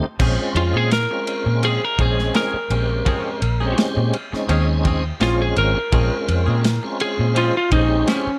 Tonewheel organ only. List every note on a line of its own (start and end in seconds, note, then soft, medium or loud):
0.19 0.90 G#3 medium
0.19 0.90 C4 medium
0.19 0.90 C#4 medium
0.19 0.91 F4 medium
1.11 1.81 G#3 medium
1.11 1.81 C4 medium
1.11 1.81 C#4 medium
1.11 1.81 F4 medium
1.99 2.57 G#3 medium
1.99 2.57 C4 medium
1.99 2.57 C#4 medium
1.99 2.57 G#4 medium
2.71 3.41 G#3 medium
2.71 3.41 C4 medium
2.71 3.42 C#4 medium
2.71 3.42 G4 medium
3.61 4.17 G#3 loud
3.61 4.17 C4 medium
3.61 4.17 C#4 medium
3.61 4.17 G4 loud
4.33 5.04 G#3 medium
4.33 5.04 C4 medium
4.33 5.04 C#4 medium
4.33 5.04 D#4 loud
5.20 5.78 G#3 medium
5.20 5.79 C4 medium
5.20 5.79 C#4 medium
5.20 5.79 F4 medium
5.92 6.63 G#3 medium
5.92 6.63 C4 medium
5.92 6.64 C#4 medium
5.92 6.64 F4 medium
6.84 7.54 G#3 medium
6.84 7.54 C4 medium
6.84 7.55 C#4 medium
6.84 7.55 F4 medium
7.71 8.29 G#3 medium
7.71 8.29 C4 medium
7.71 8.30 C#4 medium
7.71 8.30 G4 medium